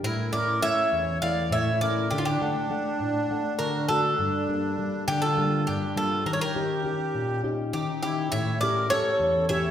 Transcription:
0.03 0.61 A2 medium
0.03 0.31 E4 medium
0.03 0.31 A#4 medium
0.32 0.61 A3 soft
0.32 0.61 C#4 soft
0.32 0.61 E4 medium
0.32 0.61 A#4 medium
0.32 0.60 D5 medium
0.62 1.10 A3 soft
0.62 1.10 C#4 soft
0.62 1.10 E4 soft
0.62 1.19 C#5 medium
0.62 1.18 E5 loud
0.92 1.50 E2 medium
1.22 1.70 A3 soft
1.22 1.70 C#4 soft
1.22 1.70 E4 medium
1.22 1.50 D5 medium
1.22 1.52 F5 medium
1.51 2.09 A2 medium
1.51 1.80 C#5 medium
1.51 1.80 E5 medium
1.81 2.05 A3 soft
1.81 2.05 C#4 soft
1.81 2.05 E4 medium
1.81 2.09 A#4 medium
1.81 2.12 D5 medium
2.10 2.41 D3 medium
2.10 2.19 D4 medium
2.10 2.18 G4 medium
2.18 2.26 C#4 soft
2.18 2.26 F4 medium
2.25 3.87 D4 medium
2.25 3.85 G4 medium
2.41 2.69 A3 medium
2.41 2.69 D4 soft
2.41 2.69 F#5 medium
2.70 3.00 A3 soft
2.70 3.18 D4 soft
2.70 3.18 F#5 medium
3.00 3.30 A2 medium
3.30 3.78 A3 soft
3.30 3.78 D4 soft
3.30 3.78 F#5 medium
3.59 4.17 D3 medium
3.59 3.88 F#4 medium
3.59 3.87 A#4 medium
3.89 4.13 A3 soft
3.89 4.13 D4 soft
3.89 5.04 D4 medium
3.89 4.13 F#4 medium
3.89 5.04 A4 medium
4.19 4.77 G2 medium
4.48 4.78 G3 soft
4.48 4.78 A#3 soft
4.48 4.78 D4 medium
4.79 5.26 G3 soft
4.79 5.26 A#3 soft
4.79 5.26 D4 soft
5.08 5.65 D3 medium
5.08 5.22 D4 medium
5.08 5.23 G4 loud
5.22 5.65 F4 medium
5.22 5.68 A4 medium
5.37 5.85 G3 medium
5.37 5.85 A#3 soft
5.37 5.85 D4 medium
5.67 6.25 G2 medium
5.67 5.95 D4 medium
5.67 5.95 G4 medium
5.96 6.20 G3 soft
5.96 6.20 A#3 soft
5.96 6.20 D4 medium
5.96 6.24 F4 medium
5.96 6.25 A4 medium
6.26 6.83 D#3 medium
6.26 6.34 G4 medium
6.26 6.33 A#4 medium
6.33 6.41 A#4 medium
6.33 6.41 C#5 medium
6.41 7.41 G4 medium
6.41 7.40 A#4 medium
6.55 6.83 C#4 soft
6.55 6.84 D#4 soft
6.55 6.84 G4 medium
6.84 7.32 C#4 soft
6.84 7.32 D#4 soft
6.84 7.33 G4 soft
7.15 7.72 A#2 medium
7.44 7.91 C#4 soft
7.44 7.91 D#4 soft
7.44 7.91 G4 medium
7.73 8.31 D#3 medium
7.73 8.02 D#4 medium
7.73 8.01 G4 medium
8.03 8.27 C#4 soft
8.03 8.27 D#4 soft
8.03 8.31 E4 medium
8.03 8.30 G4 medium
8.03 8.27 G4 medium
8.32 8.90 A2 medium
8.32 8.60 C#5 medium
8.32 8.59 E5 medium
8.61 8.90 A3 soft
8.61 8.90 C#4 soft
8.61 8.91 G4 medium
8.61 8.89 A#4 medium
8.61 8.90 D5 medium
8.90 9.38 A3 soft
8.90 9.38 C#4 soft
8.90 9.39 G4 medium
8.90 9.46 A4 medium
8.90 9.45 C#5 loud
9.19 9.71 E2 medium
9.49 9.71 A3 soft
9.49 9.71 C#4 soft
9.49 9.71 G4 medium
9.49 9.71 C#5 medium
9.49 9.71 E5 medium

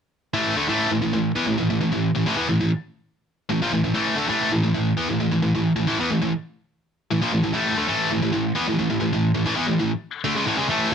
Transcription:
0.34 0.56 A2 medium
0.34 0.56 E3 loud
0.34 0.56 A3 loud
0.56 0.67 D3 medium
0.56 0.67 A3 loud
0.69 0.90 A2 medium
0.69 0.90 E3 medium
0.69 0.90 A3 medium
0.91 1.01 A2 medium
0.91 1.01 E3 medium
1.02 1.12 A2 medium
1.02 1.12 E3 medium
1.13 1.31 A2 medium
1.13 1.31 E3 medium
1.36 1.46 E3 medium
1.36 1.46 B3 loud
1.47 1.57 A2 medium
1.47 1.58 E3 medium
1.58 1.69 A2 medium
1.58 1.69 E3 medium
1.70 1.79 A2 medium
1.70 1.79 E3 medium
1.81 1.91 A2 medium
1.81 1.92 E3 medium
1.92 2.10 A2 medium
1.92 2.10 E3 medium
2.15 2.25 A2 medium
2.15 2.26 E3 medium
2.26 2.36 A2 medium
2.26 2.36 E3 loud
2.37 2.47 E3 medium
2.37 2.47 B3 loud
2.49 2.59 A2 medium
2.49 2.59 E3 medium
2.61 2.71 A2 medium
2.61 2.71 E3 medium
3.49 3.61 A2 medium
3.49 3.61 E3 medium
3.62 3.72 A#2 medium
3.62 3.72 F3 loud
3.73 3.83 A2 medium
3.73 3.83 E3 medium
3.84 3.93 A2 medium
3.84 3.93 E3 medium
3.94 4.16 A2 medium
3.94 4.16 E3 loud
3.94 4.16 A3 medium
4.17 4.27 D3 medium
4.17 4.28 A3 loud
4.29 4.50 A2 medium
4.29 4.50 E3 medium
4.29 4.51 A3 loud
4.52 4.62 A2 medium
4.52 4.63 E3 medium
4.63 4.73 A2 medium
4.63 4.73 E3 medium
4.74 4.92 A2 medium
4.74 4.92 E3 medium
4.97 5.07 E3 medium
4.97 5.07 B3 loud
5.09 5.19 A2 medium
5.09 5.19 E3 medium
5.20 5.30 A2 medium
5.20 5.31 E3 medium
5.31 5.41 A2 medium
5.31 5.41 E3 medium
5.42 5.53 A2 medium
5.42 5.53 E3 medium
5.55 5.71 A2 medium
5.55 5.72 E3 medium
5.76 5.86 A2 medium
5.76 5.86 E3 medium
5.87 5.97 A2 medium
5.87 5.97 E3 loud
6.00 6.09 E3 medium
6.00 6.09 B3 loud
6.11 6.20 A2 medium
6.11 6.21 E3 medium
6.22 6.32 A2 medium
6.22 6.32 E3 medium
7.11 7.21 A2 medium
7.11 7.22 E3 medium
7.21 7.32 A#2 medium
7.21 7.32 F3 medium
7.33 7.42 A2 medium
7.33 7.43 E3 medium
7.44 7.52 A2 medium
7.44 7.53 E3 medium
7.54 7.76 A2 medium
7.54 7.76 E3 medium
7.54 7.77 A3 loud
7.77 7.87 D3 medium
7.77 7.87 A3 loud
7.88 8.10 A2 medium
7.88 8.11 E3 medium
7.88 8.11 A3 medium
8.11 8.21 A2 medium
8.11 8.21 E3 medium
8.22 8.31 A2 medium
8.22 8.32 E3 medium
8.33 8.51 A2 medium
8.33 8.52 E3 medium
8.55 8.66 E3 medium
8.55 8.66 B3 loud
8.67 8.77 A2 medium
8.67 8.78 E3 medium
8.79 8.88 A2 medium
8.79 8.89 E3 medium
8.90 8.99 A2 medium
8.90 9.00 E3 medium
9.00 9.12 A2 medium
9.00 9.12 E3 medium
9.13 9.31 A2 medium
9.13 9.31 E3 medium
9.35 9.45 A2 medium
9.35 9.45 E3 medium
9.46 9.56 A2 medium
9.46 9.55 E3 medium
9.57 9.67 E3 medium
9.57 9.68 B3 medium
9.68 9.79 A2 medium
9.68 9.79 E3 medium
9.80 9.91 A2 medium
9.80 9.92 E3 medium
10.24 10.35 D3 medium
10.24 10.36 A3 medium
10.36 10.46 C#3 loud
10.36 10.47 G#3 loud
10.47 10.58 A2 medium
10.47 10.58 E3 loud
10.58 10.69 C#3 medium
10.58 10.69 G#3 loud
10.70 10.91 A2 medium
10.70 10.92 E3 medium
10.70 10.92 A3 medium

